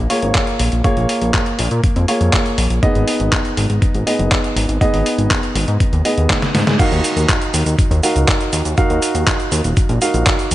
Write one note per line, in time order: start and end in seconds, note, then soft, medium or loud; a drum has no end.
0.10 0.81 A#3 medium
0.10 0.81 F4 medium
0.10 0.81 G#4 medium
0.10 0.81 C#5 medium
0.10 open hi-hat loud
0.22 0.32 G#1 medium
0.22 closed hi-hat soft
0.35 kick loud
0.35 clap loud
0.35 closed hi-hat medium
0.47 closed hi-hat soft
0.59 0.70 A#1 medium
0.59 open hi-hat loud
0.72 0.82 A#1 medium
0.72 closed hi-hat soft
0.84 2.05 A#3 medium
0.84 2.05 F4 medium
0.84 2.05 G#4 medium
0.84 2.05 C#5 loud
0.84 kick loud
0.84 closed hi-hat medium
0.97 1.07 A#1 medium
0.97 closed hi-hat soft
1.09 open hi-hat loud
1.22 1.32 A#1 medium
1.22 closed hi-hat soft
1.34 kick loud
1.34 clap loud
1.34 closed hi-hat medium
1.46 closed hi-hat soft
1.59 1.69 A#1 medium
1.59 open hi-hat loud
1.71 1.81 A#2 medium
1.71 closed hi-hat soft
1.84 kick loud
1.84 closed hi-hat medium
1.96 2.06 F2 medium
1.96 closed hi-hat soft
2.08 2.80 A#3 medium
2.08 2.80 F4 medium
2.08 2.80 G#4 medium
2.08 2.80 C#5 medium
2.08 open hi-hat loud
2.21 2.31 F2 medium
2.21 closed hi-hat soft
2.33 kick loud
2.33 clap loud
2.33 closed hi-hat medium
2.46 closed hi-hat soft
2.58 2.68 A#1 medium
2.58 open hi-hat loud
2.70 2.80 A#1 medium
2.70 closed hi-hat soft
2.83 4.04 B3 medium
2.83 4.04 D#4 medium
2.83 4.04 G#4 medium
2.83 4.04 D#5 loud
2.83 kick loud
2.83 closed hi-hat medium
2.95 3.05 G#1 medium
2.95 closed hi-hat soft
3.08 open hi-hat loud
3.20 3.30 G#1 medium
3.20 closed hi-hat soft
3.32 kick loud
3.32 clap loud
3.32 closed hi-hat medium
3.45 closed hi-hat soft
3.57 3.67 G#1 medium
3.57 open hi-hat loud
3.70 3.79 G#1 medium
3.70 closed hi-hat soft
3.82 kick loud
3.82 closed hi-hat medium
3.94 4.04 G#1 medium
3.94 closed hi-hat soft
4.07 4.78 B3 medium
4.07 4.78 D#4 medium
4.07 4.78 G#4 medium
4.07 4.78 D#5 medium
4.07 open hi-hat loud
4.19 4.29 F#1 medium
4.19 closed hi-hat soft
4.32 kick loud
4.32 clap loud
4.32 closed hi-hat medium
4.44 closed hi-hat soft
4.56 4.66 G#1 loud
4.56 open hi-hat loud
4.69 4.79 G#1 medium
4.69 closed hi-hat soft
4.81 6.02 B3 medium
4.81 6.02 D#4 medium
4.81 6.02 G#4 medium
4.81 6.02 D#5 loud
4.81 kick loud
4.81 closed hi-hat medium
4.93 5.03 G#1 medium
4.93 open hi-hat medium
5.06 open hi-hat loud
5.18 5.28 G#1 medium
5.18 closed hi-hat soft
5.31 kick loud
5.31 clap loud
5.31 closed hi-hat loud
5.43 closed hi-hat soft
5.55 5.65 G#1 medium
5.55 open hi-hat loud
5.68 5.78 G#2 medium
5.68 closed hi-hat soft
5.80 kick loud
5.80 closed hi-hat loud
5.93 6.03 D#2 medium
5.93 closed hi-hat soft
6.05 6.76 B3 medium
6.05 6.76 D#4 medium
6.05 6.76 G#4 medium
6.05 6.76 D#5 medium
6.05 open hi-hat loud
6.18 6.27 D#2 medium
6.18 closed hi-hat soft
6.30 kick loud
6.30 snare medium
6.30 clap loud
6.30 closed hi-hat medium
6.42 snare medium
6.42 closed hi-hat soft
6.54 6.64 G#2 medium
6.54 snare medium
6.54 open hi-hat loud
6.67 6.77 G#2 medium
6.67 snare medium
6.67 closed hi-hat soft
6.79 8.00 D#4 loud
6.79 8.00 F#4 medium
6.79 8.00 A#4 medium
6.79 8.00 F5 loud
6.79 kick loud
6.79 closed hi-hat medium
6.79 crash loud
6.79 cabasa soft
6.92 7.02 D#2 medium
6.92 closed hi-hat soft
6.92 cabasa soft
7.04 open hi-hat loud
7.04 cabasa medium
7.16 7.26 D#2 medium
7.16 closed hi-hat soft
7.16 cabasa soft
7.29 kick loud
7.29 clap loud
7.29 closed hi-hat loud
7.29 cabasa soft
7.42 closed hi-hat soft
7.42 cabasa soft
7.54 7.64 D#2 loud
7.54 open hi-hat loud
7.54 cabasa medium
7.66 7.76 D#2 medium
7.66 closed hi-hat soft
7.66 cabasa soft
7.79 kick loud
7.79 closed hi-hat loud
7.79 cabasa soft
7.91 8.01 D#2 medium
7.91 closed hi-hat soft
7.91 cabasa soft
8.03 8.75 D#4 medium
8.03 8.75 F#4 medium
8.03 8.75 A#4 medium
8.03 8.75 F5 medium
8.03 open hi-hat loud
8.03 cabasa medium
8.16 8.26 C#2 medium
8.16 closed hi-hat soft
8.16 cabasa soft
8.28 kick loud
8.28 clap loud
8.28 closed hi-hat loud
8.28 cabasa soft
8.41 closed hi-hat soft
8.41 cabasa soft
8.53 8.63 D#2 loud
8.53 open hi-hat loud
8.53 cabasa medium
8.65 8.75 D#2 medium
8.65 closed hi-hat soft
8.65 cabasa soft
8.78 9.99 D#4 medium
8.78 9.99 F#4 medium
8.78 9.99 A#4 medium
8.78 9.99 F5 loud
8.78 kick loud
8.78 closed hi-hat medium
8.78 cabasa soft
8.90 9.00 D#2 medium
8.90 closed hi-hat soft
8.90 cabasa soft
9.02 open hi-hat loud
9.02 cabasa medium
9.15 9.25 D#2 medium
9.15 closed hi-hat soft
9.15 cabasa soft
9.27 kick loud
9.27 clap loud
9.27 closed hi-hat medium
9.27 cabasa soft
9.40 closed hi-hat soft
9.40 cabasa soft
9.52 9.62 D#2 medium
9.52 open hi-hat loud
9.52 cabasa medium
9.64 9.74 D#1 medium
9.64 closed hi-hat soft
9.64 cabasa soft
9.77 kick loud
9.77 closed hi-hat loud
9.77 cabasa soft
9.89 9.99 A#1 medium
9.89 closed hi-hat soft
9.89 cabasa soft
10.02 10.55 D#4 medium
10.02 10.55 F#4 medium
10.02 10.55 A#4 medium
10.02 10.55 F5 medium
10.02 open hi-hat loud
10.02 cabasa medium
10.14 10.24 A#1 medium
10.14 closed hi-hat soft
10.14 cabasa soft
10.27 kick loud
10.27 clap loud
10.27 closed hi-hat loud
10.27 cabasa soft
10.39 closed hi-hat soft
10.39 cabasa soft
10.51 10.55 D#1 loud
10.51 open hi-hat loud
10.51 cabasa medium